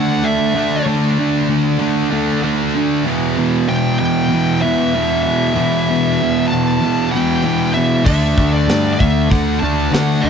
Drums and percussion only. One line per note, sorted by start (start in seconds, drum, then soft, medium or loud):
8.06 kick loud
8.06 crash loud
8.38 kick loud
8.69 snare loud
8.69 open hi-hat medium
9.00 kick loud
9.31 kick medium
9.31 open hi-hat medium
9.94 snare loud
9.94 open hi-hat medium